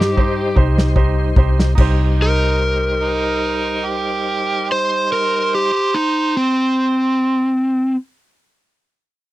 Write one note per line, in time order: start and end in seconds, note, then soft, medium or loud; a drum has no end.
0.00 0.53 G2 medium
0.00 1.74 G3 medium
0.00 1.74 D#4 medium
0.00 0.55 G4 medium
0.00 1.74 C5 medium
0.00 snare medium
0.17 0.47 D#4 medium
0.17 0.47 G4 medium
0.17 0.47 C5 medium
0.17 kick medium
0.56 1.33 C2 medium
0.56 0.86 D#4 medium
0.56 0.86 G4 medium
0.56 0.87 C5 medium
0.56 kick medium
0.78 snare medium
0.96 1.26 D#4 medium
0.96 1.27 G4 medium
0.96 1.27 C5 medium
0.96 kick loud
1.36 1.75 C2 medium
1.36 1.68 D#4 medium
1.36 1.68 G4 medium
1.36 1.68 C5 medium
1.36 kick loud
1.60 snare medium
1.75 5.71 C2 medium
1.75 5.72 G3 medium
1.75 5.68 D#4 medium
1.75 5.72 D#4 medium
1.75 5.71 G4 medium
1.75 5.72 C5 medium
1.75 kick medium
1.75 crash medium
1.81 5.74 C5 medium
2.20 2.60 D#4 medium
2.20 4.67 A#4 medium
3.02 3.88 D#4 medium
3.86 4.72 G4 medium
4.71 7.54 C5 loud
4.71 5.11 C5 medium
5.13 5.52 A#4 medium
5.55 5.94 G4 medium
5.95 6.35 D#4 medium
6.37 7.96 C4 medium